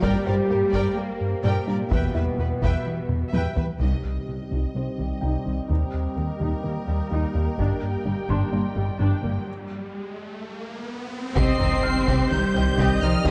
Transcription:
Already playing: ambient pad A#3 G5
0.02 analog synth bass G2, double bass section G2, ambient pad G3 G4, synth arpeggio sound G3, cello section G3, french horn section G4, viola section A#4, violin section D5 G5, taiko
0.26 double bass section G2, analog synth bass G2, synth arpeggio sound G4, viola section A#4, violin section A#4 D5, felt piano C5
0.50 double bass section G2, analog synth bass G2, synth arpeggio sound A#3, violin section G4 A#4, viola section A#4
0.73 double bass section G2, analog synth bass G2, synth arpeggio sound G3, viola section A#4, violin section D5 G5, taiko
0.97 analog synth bass G3, cello section A#3, french horn section A#4
1.21 analog synth bass G2
1.44 double bass section G2, analog synth bass G2, cello section A#2, synth arpeggio sound G3, french horn section A#3, viola section A#4, violin section D5 G5
1.67 double bass section G2, analog synth bass G3, synth arpeggio sound D4, violin section A#4 D5, viola section A#4
1.91 analog synth bass E2, double bass section E2, cello section B2, synth arpeggio sound E3, french horn section B3, ambient pad B3, viola section B4, violin section E5 G5, taiko
2.15 double bass section E2, analog synth bass E2, synth arpeggio sound E4, viola section B4, violin section B4 E5, felt piano B4
2.38 double bass section E2, analog synth bass E2, synth arpeggio sound G3, violin section G4 B4, viola section B4
2.62 double bass section E2, analog synth bass E2, synth arpeggio sound E3, viola section B4, violin section E5 G5, taiko
2.86 analog synth bass E3
3.09 analog synth bass E2, taiko mid
3.33 double bass section E2, analog synth bass E2, synth arpeggio sound E3, viola section B4, violin section E5 G5, taiko high
3.56 double bass section E2, analog synth bass E3, synth arpeggio sound B3, violin section B4 E5, viola section B4, taiko low
3.79 cello section C2, analog synth bass C2, double bass section C2, synth arpeggio sound C3, ambient pad G3 C4 G4 D#5, french horn section G3 D#4, viola section D#4, violin section D#5 G5, taiko
4.04 analog synth bass C2
4.27 double bass section C2, cello section C2, analog synth bass C3, synth arpeggio sound G3, viola section G3
4.51 double bass section C2, cello section C2, analog synth bass C2, synth arpeggio sound C3, viola section D#4
4.75 double bass section C2, cello section C2, analog synth bass C3, synth arpeggio sound G3, viola section C4, felt piano C4 C5
4.98 cello section C2, analog synth bass C2, double bass section C2, synth arpeggio sound D#3, viola section G3
5.21 cello section C2, double bass section C2, analog synth bass C2, synth arpeggio sound C3, viola section D#4, felt piano G5
5.45 analog synth bass C2, double bass section C2, cello section C2, synth arpeggio sound D#3, viola section C4
5.69 cello section D#2, double bass section D#2, analog synth bass D#2, synth arpeggio sound D#3, ambient pad A#3, french horn section A#3, viola section D#4, violin section A#4
5.94 analog synth bass D#2
6.17 cello section D#2, double bass section D#2, analog synth bass D#3, viola section G3, synth arpeggio sound A#3
6.40 cello section D#2, double bass section D#2, analog synth bass D#2, synth arpeggio sound D#3, viola section D#4
6.64 cello section D#2, double bass section D#2, analog synth bass D#3, synth arpeggio sound A#3, viola section A#3
6.87 double bass section D#2, cello section D#2, analog synth bass D#2, synth arpeggio sound G3, viola section G3
7.11 double bass section D#2, cello section D#2, analog synth bass D#2, synth arpeggio sound D#3, viola section D#4
7.34 cello section D#2, analog synth bass D#2, double bass section D#2, synth arpeggio sound G3, viola section A#3
7.58 double bass section G1, cello section G2, analog synth bass G2, french horn section G3, synth arpeggio sound G3, viola section D4, ambient pad D5, violin section G5, taiko, riser
7.82 analog synth bass G2
8.06 double bass section G1, cello section G2, analog synth bass G3, viola section G3, synth arpeggio sound D4
8.29 double bass section G1, cello section G2, analog synth bass G2, synth arpeggio sound G3, viola section D4, felt piano C6
8.53 double bass section G1, cello section G2, analog synth bass G3, viola section A#3, synth arpeggio sound D4
8.76 double bass section G1, cello section G2, analog synth bass G2, viola section G3, synth arpeggio sound A#3
9.00 double bass section G1, cello section G2, analog synth bass G2, synth arpeggio sound G3, viola section D4
9.22 double bass section G1, cello section G2, analog synth bass G2, viola section A#3, synth arpeggio sound A#3
11.35 double bass section C2, analog synth bass C2, synth arpeggio sound C3, trombone section D#3 G3, ambient pad G3 C4 G4 D#5, violin section C4 G4 C7, french horn section C4 G4, cello section C4, viola section D#5, taiko, impact
11.60 double bass section C2, analog synth bass C2, synth arpeggio sound D#3, violin section D#4 C5, taiko low-mid
11.83 analog synth bass C2, viola section C5, felt piano F6
12.07 double bass section C2, analog synth bass C2, synth arpeggio sound C3, violin section C4 G4, taiko
12.31 analog synth bass C2, double bass section C2, synth arpeggio sound D#3, cello section G3, violin section D#4 C5 G6
12.54 analog synth bass C2, double bass section C2, synth arpeggio sound C4, violin section G4 D#5
12.78 analog synth bass C2, double bass section C2, synth arpeggio sound C3, violin section C4 G4, viola section D#5, taiko
13.01 analog synth bass C2, double bass section C2, cello section F3, synth arpeggio sound C4, violin section D#4 C5 F6
13.25 analog synth bass D#2, double bass section D#2, cello section D#3, synth arpeggio sound D#3, ambient pad A#3, violin section A#3 G4 D#6, french horn section A#3, viola section C5, taiko

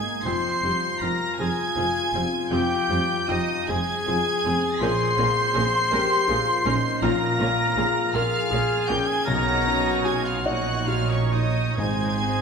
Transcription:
Already playing: felt piano G#2 G#3 A#3 D#4 G#4, french horn section D#4, oboe G#4, violin section G#5 G#6
0.24 double bass section F1, felt piano F2, cello section F2, viola section C4 G4, french horn section F4, oboe C5, violin section C6 C7, flute C6
0.62 double bass section F1, cello section F2, felt piano G3, viola section C4 G4
1.00 double bass section F1, cello section F2, viola section C4 G4, felt piano F4, oboe A#4, violin section A#5 A#6, flute A#5
1.39 double bass section F1, cello section F2, viola section C4 G#4, felt piano G#4, oboe G#4, violin section G#5 G#6, flute G#5
1.76 double bass section F1, cello section F2, viola section C4 G#4, felt piano F4
2.14 double bass section F1, cello section F2, viola section G3 C4, felt piano C4
2.51 double bass section F1, felt piano F2, cello section F2, viola section C4 G4, oboe G4, violin section G5 G6, flute G5
2.89 double bass section F1, cello section F2, felt piano G3, viola section C4 G4
3.28 double bass section F1, cello section F2, viola section C4 G4, oboe D#4, felt piano F4, violin section D#5 D#6, flute D#5
3.67 double bass section F1, cello section F2, viola section C4 G#4, french horn section G#4, felt piano G#4, oboe G#4, violin section G#5 G#6, flute G#5
4.07 double bass section F1, cello section F2, viola section C4 G#4, felt piano F4
4.45 double bass section F1, cello section F2, felt piano C4, viola section C4 G#4
4.80 double bass section A#1, felt piano A#1, cello section A#2, viola section C#4 A#4, oboe C5, flute C6, violin section C6 C7
5.17 double bass section A#1, cello section A#2, felt piano A#3, viola section C#4 A#4
5.53 double bass section A#1, cello section A#2, viola section C#4 A#4, felt piano G#4
5.91 double bass section A#1, cello section A#2, viola section C#4 A#4, french horn section G4, felt piano A#4
6.28 double bass section A#1, cello section A#2, viola section C#4 A#4, french horn section F4, felt piano G#4
6.65 double bass section A#1, cello section A#2, viola section C#4 A#4, felt piano C#4, french horn section D#4
7.01 double bass section A#1, felt piano A#1, cello section A#2, viola section C#4 A#4, french horn section F4, oboe A#4, flute A#5, violin section A#5 A#6
7.39 double bass section A#1, cello section A#2, felt piano A#3, viola section C#4 A#4
7.76 double bass section A#1, cello section A#2, viola section C#4 A#4, felt piano G#4
8.14 double bass section A#1, cello section A#2, viola section C#4 A#4, oboe F4, french horn section G#4, felt piano A#4, flute F5, violin section F5 F6
8.50 double bass section A#1, cello section A#2, viola section C#4 A#4, felt piano G#4
8.88 double bass section A#1, cello section A#2, viola section C#4 A#4, felt piano C#4, oboe G4, violin section G5 G6, flute G5
9.07 oboe G#4, violin section G#5 G#6, flute G#5
9.25 felt piano B1, double bass section B1, cello section B2, viola section D#4 C#5, french horn section F#4, oboe A#4, violin section A#5 A#6, flute A#5
9.67 felt piano C#4
10.04 felt piano F#4, oboe G#4, violin section G#5 G#6, flute G#5
10.24 oboe F4, flute F5, violin section F5 F6
10.41 double bass section A#1, flute F#5, violin section F#5
10.46 cello section A#2, french horn section D#4, viola section D#4 C#5, oboe F#4, felt piano C#5, violin section F#6
10.85 oboe F4, felt piano F#4, flute F5, violin section F5 F6
11.10 oboe C#4, flute C#5, violin section C#5 C#6
11.32 oboe D#4, felt piano D#4, flute D#5, violin section D#5 D#6
11.76 double bass section G#1, timpani G#2, felt piano G#2, cello section G#2, french horn section C4, viola section D#4 C5, oboe G#4, flute G#5, violin section G#6
11.80 violin section G#5
12.22 felt piano C4

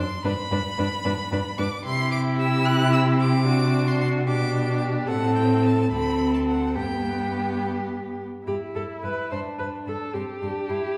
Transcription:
0.00 violin C6
0.25 cello G2, viola D4, violin B4 B5
0.51 cello G2, viola D4, violin B4
0.78 cello G2, viola D4, violin B4
1.05 cello G2, viola D4, violin B4
1.32 cello G2, viola D4, violin B4
1.58 cello G2, viola D4, violin B4 D6
1.85 cello C3, viola E4, violin G4 C6
2.12 violin D6
2.39 violin E6
2.66 violin F#6
2.93 violin E6
3.20 violin D6
3.46 viola D4, violin F#4
3.87 violin C6
4.00 violin C6
4.27 cello B2, viola D4, violin G4 D6
5.07 cello A2, viola C4, violin A4 F#5
5.36 violin G5
5.63 violin A5
5.91 cello D2, viola C4, violin A4 B5
6.34 violin A5
6.48 violin F#5
6.75 cello G2, viola B3, violin G4 G5
8.46 cello G2, violin E4 B5, viola G4
8.75 cello G2, viola A4, violin B5
9.03 cello G2, viola B4, violin B5
9.31 cello G2, violin D4 B5, viola C5
9.59 cello G2, viola B4, violin B5
9.87 cello G2, viola A4, violin B5
10.14 cello G2, violin C4 C6, viola G4
10.42 cello G2, violin D4 C6
10.69 cello G2, violin E4 C6

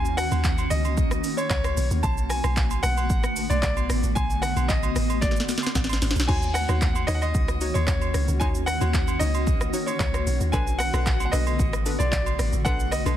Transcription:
Already playing: log drum bass D#2, ambient pad D#3 A#3 C#4 F#4, grand piano G#5
0.05 shaker
0.17 grand piano F#5, cross-stick, open hi-hat, shaker
0.32 log drum bass D#2, high agogo, shaker
0.44 kick, clap, low woodblock, shaker
0.58 high agogo, shaker
0.70 log drum bass C#2, grand piano D#5, open hi-hat, shaker
0.85 high agogo, shaker
0.97 kick, shaker
1.11 cross-stick, shaker
1.24 open hi-hat, shaker
1.37 grand piano C#5, high agogo, shaker
1.50 log drum bass C#2, grand piano C#5, kick, clap, low woodblock, shaker
1.64 cross-stick, high agogo, shaker
1.77 log drum bass B1, ambient pad D3 A3 B3 F#4, open hi-hat, shaker
1.91 log drum bass D#2, shaker
2.03 log drum bass B1, grand piano A5, kick, high agogo, shaker
2.18 shaker
2.30 grand piano G#5, cross-stick, open hi-hat, shaker
2.44 log drum bass B1, cross-stick, high agogo, shaker
2.57 kick, clap, low woodblock, shaker
2.71 high agogo, shaker
2.83 log drum bass B1, grand piano F#5, cross-stick, open hi-hat, shaker
2.97 high agogo, shaker
3.10 log drum bass A1, kick, shaker
3.24 cross-stick, shaker
3.36 open hi-hat, shaker
3.50 log drum bass B1, grand piano D5, high agogo, shaker
3.62 log drum bass B1, grand piano D5, kick, clap, low woodblock, shaker
3.77 high agogo, shaker
3.89 log drum bass A1, cross-stick, open hi-hat, shaker
4.03 log drum bass A1, shaker
4.15 log drum bass B1, grand piano G#5, kick, high agogo, shaker
4.30 shaker
4.42 grand piano F#5, cross-stick, open hi-hat, shaker
4.56 log drum bass B1, high agogo, shaker
4.68 grand piano D#5, kick, clap, low woodblock, shaker
4.83 high agogo, shaker
4.96 log drum bass A1, cross-stick, open hi-hat, shaker
5.10 high agogo, shaker
5.21 grand piano D5, kick, snare, shaker
5.31 snare
5.36 snare, shaker
5.49 snare, open hi-hat, shaker
5.58 snare
5.63 snare, high agogo, shaker
5.75 log drum bass A1, kick, snare, low woodblock, shaker
5.84 snare
5.89 snare, high agogo, shaker
6.02 log drum bass G#1, snare, open hi-hat, shaker
6.11 snare
6.16 log drum bass B1, shaker
6.20 snare
6.28 log drum bass D#2, ambient pad D#3 A#3 C#4, synth pluck D#4 F#4 C#5, grand piano G#5, kick, crash, high agogo
6.42 shaker
6.54 grand piano F#5, cross-stick, open hi-hat, shaker
6.69 log drum bass D#2, synth pluck D#4 F#4 C#5, cross-stick, high agogo, shaker
6.81 kick, clap, low woodblock, shaker
6.95 high agogo, shaker
7.07 log drum bass D#2, synth pluck D#4 F#4 C#5, grand piano D#5, cross-stick, open hi-hat, shaker
7.15 grand piano F#5
7.22 grand piano D#5, high agogo, shaker
7.35 log drum bass C#2, kick, shaker
7.48 cross-stick, shaker
7.61 synth pluck D#4 F#4 C#5, open hi-hat, shaker
7.74 log drum bass D#2, grand piano C#5, high agogo, shaker
7.87 log drum bass D#2, grand piano C#5, kick, clap, low woodblock, shaker
8.02 high agogo, shaker
8.14 log drum bass C#2, cross-stick, open hi-hat, shaker
8.28 log drum bass C#2, shaker
8.40 log drum bass D#2, synth pluck D#4 F#4 C#5, grand piano G#5, kick, high agogo, shaker
8.55 shaker
8.66 grand piano F#5, cross-stick, open hi-hat, shaker
8.81 log drum bass D#2, synth pluck D#4 F#4 C#5, high agogo, shaker
8.94 kick, clap, low woodblock, shaker
9.08 high agogo, shaker
9.19 log drum bass C#2, synth pluck D#4 F#4 C#5, grand piano D#5, open hi-hat, shaker
9.34 high agogo, shaker
9.47 kick, shaker
9.61 cross-stick, shaker
9.73 synth pluck D#4 F#4 C#5, open hi-hat, shaker
9.86 grand piano C#5, high agogo, shaker
9.99 log drum bass C#2, grand piano C#5, kick, clap, low woodblock, shaker
10.14 cross-stick, high agogo, shaker
10.27 log drum bass B1, ambient pad D3 A3 B3, open hi-hat, shaker
10.40 log drum bass D#2, shaker
10.52 log drum bass B1, synth pluck D4 A4 B4, grand piano G#5, kick, high agogo, shaker
10.67 shaker
10.79 grand piano F#5, cross-stick, open hi-hat, shaker
10.93 log drum bass B1, synth pluck D4 A4 B4, cross-stick, high agogo, shaker
11.06 kick, clap, low woodblock, shaker
11.20 high agogo, shaker
11.25 grand piano F#5
11.32 log drum bass B1, synth pluck D4 A4 B4, grand piano D#5, cross-stick, open hi-hat, shaker
11.47 high agogo, shaker
11.59 log drum bass A1, kick, shaker
11.73 cross-stick, shaker
11.86 synth pluck D4 A4 B4, open hi-hat, shaker
11.99 log drum bass B1, grand piano D5, high agogo, shaker
12.11 log drum bass B1, grand piano D5, kick, clap, low woodblock, shaker
12.26 high agogo, shaker
12.39 log drum bass A1, ambient pad C#3, cross-stick, open hi-hat, shaker
12.53 log drum bass A1, shaker
12.65 log drum bass B1, synth pluck D4 A4 B4, grand piano F#5, kick, high agogo, shaker
12.80 shaker
12.91 grand piano D#5, cross-stick, open hi-hat, shaker
13.06 log drum bass B1, synth pluck D4 A4 B4, high agogo, shaker

